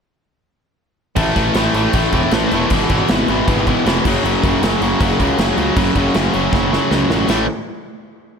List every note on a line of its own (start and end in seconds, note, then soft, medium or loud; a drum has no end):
1.16 1.29 A1 medium
1.16 1.34 A2 medium
1.16 1.35 E3 loud
1.16 1.35 A3 loud
1.16 kick loud
1.16 crash medium
1.35 1.49 A1 medium
1.35 1.55 A2 medium
1.35 1.56 E3 medium
1.35 1.56 A3 medium
1.35 kick medium
1.35 crash medium
1.54 1.67 A1 loud
1.54 1.74 A2 loud
1.54 1.74 E3 medium
1.54 1.75 A3 medium
1.54 snare loud
1.54 crash medium
1.74 1.86 A1 medium
1.74 1.93 A2 medium
1.74 1.93 E3 medium
1.74 1.94 A3 loud
1.74 crash medium
1.93 2.06 A1 loud
1.93 2.12 A2 loud
1.93 2.13 E3 loud
1.93 2.13 A3 loud
1.93 kick loud
1.93 crash medium
2.12 2.25 E1 loud
2.12 2.32 A2 medium
2.12 2.32 E3 medium
2.12 2.32 A3 medium
2.12 kick medium
2.12 crash medium
2.31 2.44 A1 medium
2.31 2.52 A2 medium
2.31 2.53 E3 loud
2.31 2.53 A3 loud
2.31 snare loud
2.31 crash medium
2.51 2.64 E1 loud
2.51 2.71 A2 medium
2.51 2.71 E3 loud
2.51 2.71 A3 loud
2.51 crash medium
2.70 2.83 G#1 medium
2.70 2.89 E2 medium
2.70 2.89 B2 loud
2.70 2.90 E3 medium
2.70 kick loud
2.70 crash medium
2.89 3.02 G#1 loud
2.89 3.09 E2 medium
2.89 3.10 B2 medium
2.89 3.09 E3 loud
2.89 kick loud
2.89 crash medium
3.08 3.22 G#1 medium
3.08 3.28 E2 medium
3.08 3.28 B2 medium
3.08 3.28 E3 loud
3.08 snare loud
3.08 crash medium
3.28 3.40 G#1 medium
3.28 3.47 E2 medium
3.28 3.47 B2 medium
3.28 3.47 E3 loud
3.28 crash medium
3.48 3.72 G#1 loud
3.48 3.66 E2 medium
3.48 3.67 B2 loud
3.48 3.67 E3 loud
3.48 kick loud
3.48 crash medium
3.67 3.85 E2 medium
3.67 3.85 B2 medium
3.67 3.85 E3 medium
3.67 kick medium
3.67 crash medium
3.86 3.98 F1 medium
3.86 4.04 E2 medium
3.86 4.04 B2 loud
3.86 4.04 E3 loud
3.86 snare loud
3.86 crash medium
4.05 4.17 F#1 medium
4.05 4.24 F#2 loud
4.05 4.23 C#3 loud
4.05 4.24 F#3 loud
4.05 kick loud
4.05 crash medium
4.24 4.36 F#1 medium
4.24 4.43 F#2 medium
4.24 4.43 C#3 loud
4.24 4.43 F#3 loud
4.24 crash medium
4.43 4.55 F#1 medium
4.43 4.62 F#2 medium
4.43 4.62 C#3 medium
4.43 4.63 F#3 medium
4.43 kick loud
4.43 crash medium
4.62 4.74 F#1 loud
4.62 4.82 F#2 loud
4.62 4.81 C#3 loud
4.62 4.82 F#3 loud
4.62 snare loud
4.62 crash medium
4.81 4.93 F#1 medium
4.81 4.99 F#2 medium
4.81 5.00 C#3 medium
4.81 5.00 F#3 loud
4.81 crash medium
5.00 5.12 F#1 loud
5.00 5.19 F#2 loud
5.00 5.19 C#3 loud
5.00 5.19 F#3 loud
5.00 kick loud
5.00 crash medium
5.20 5.32 C#2 loud
5.20 5.37 F#2 medium
5.20 5.38 C#3 medium
5.20 5.38 F#3 medium
5.20 kick medium
5.20 crash medium
5.38 5.51 F#1 loud
5.38 5.57 F#2 medium
5.38 5.57 C#3 loud
5.38 5.57 F#3 loud
5.38 snare loud
5.38 crash medium
5.57 5.69 C#2 loud
5.57 5.75 F#2 medium
5.57 5.76 C#3 medium
5.57 5.76 F#3 loud
5.57 crash medium
5.76 5.89 F#1 loud
5.76 5.95 F#2 loud
5.76 5.96 C#3 medium
5.76 5.96 F#3 loud
5.76 kick loud
5.76 crash loud
5.95 6.07 F#1 medium
5.95 6.14 F#2 medium
5.95 6.14 C#3 loud
5.95 6.14 F#3 medium
5.95 kick loud
5.95 crash medium
6.14 6.27 F#1 loud
6.14 6.33 F#2 loud
6.14 6.33 C#3 medium
6.14 6.33 F#3 loud
6.14 snare loud
6.14 crash medium
6.34 6.47 F#1 medium
6.34 6.52 F#2 medium
6.34 6.53 C#3 loud
6.34 6.53 F#3 medium
6.34 crash medium
6.52 6.77 F#1 medium
6.52 6.71 F#2 loud
6.52 6.71 C#3 loud
6.52 6.72 F#3 loud
6.52 kick loud
6.52 snare medium
6.72 6.90 F#2 medium
6.72 6.90 C#3 medium
6.72 6.91 F#3 medium
6.72 snare medium
6.91 7.03 C#2 medium
6.91 7.10 F#2 loud
6.91 7.10 C#3 loud
6.91 7.11 F#3 loud
6.91 snare medium
7.10 7.22 A1 loud
7.10 7.29 F#2 loud
7.10 7.29 C#3 medium
7.10 7.29 F#3 loud
7.10 snare medium
7.28 7.47 A1 medium
7.28 7.45 A2 loud
7.28 7.45 E3 loud
7.28 7.45 A3 loud
7.28 snare loud
7.28 china medium